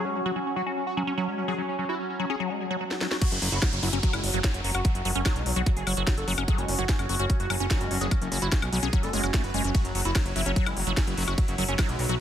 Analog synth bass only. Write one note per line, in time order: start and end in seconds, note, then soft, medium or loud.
3.32 3.39 F#1 medium
3.42 3.49 F#1 loud
3.52 3.59 F#1 medium
3.73 3.80 F#1 medium
3.83 3.90 F#1 loud
3.93 4.00 F#1 medium
4.13 4.20 F#1 medium
4.24 4.31 F#1 loud
4.34 4.41 F#1 medium
4.54 4.61 F#1 medium
4.64 4.71 F#1 loud
4.75 4.82 F#1 medium
4.95 5.02 F#1 medium
5.05 5.12 F#1 loud
5.15 5.23 F#1 medium
5.36 5.43 B1 medium
5.46 5.53 B1 loud
5.56 5.63 B1 medium
5.77 5.84 F#1 medium
5.87 5.94 F#1 loud
5.97 6.04 F#1 medium
6.17 6.25 F#1 medium
6.28 6.35 F#1 loud
6.38 6.45 F#1 medium
6.58 6.65 F#1 medium
6.68 6.76 F#1 loud
6.79 6.86 F#1 medium
6.99 7.06 F#1 medium
7.09 7.16 F#1 loud
7.19 7.27 F#1 medium
7.40 7.47 F#1 medium
7.50 7.57 F#1 loud
7.60 7.67 F#1 medium
7.81 7.88 F#1 medium
7.91 7.98 F#1 loud
8.01 8.08 F#1 medium
8.22 8.29 F#1 medium
8.32 8.39 F#1 loud
8.42 8.49 F#1 medium
8.62 8.69 B1 medium
8.73 8.80 B1 loud
8.83 8.90 B1 medium
9.03 9.10 F#1 medium
9.13 9.20 F#1 loud
9.24 9.31 F#1 medium
9.44 9.51 F#1 medium
9.54 9.61 F#1 loud
9.64 9.71 F#1 medium
9.85 9.92 F#1 medium
9.95 10.02 F#1 loud
10.05 10.12 F#1 medium
10.26 10.33 F#1 medium
10.36 10.43 F#1 loud
10.46 10.53 F#1 medium
10.66 10.74 F#1 medium
10.77 10.84 F#1 medium
10.87 10.94 F#1 medium
11.07 11.14 F#1 medium
11.18 11.25 F#1 loud
11.28 11.35 F#1 medium
11.48 11.55 F#1 medium
11.58 11.65 F#1 loud
11.69 11.76 F#1 medium
11.89 11.96 B1 medium
11.99 12.06 B1 loud
12.09 12.16 B1 medium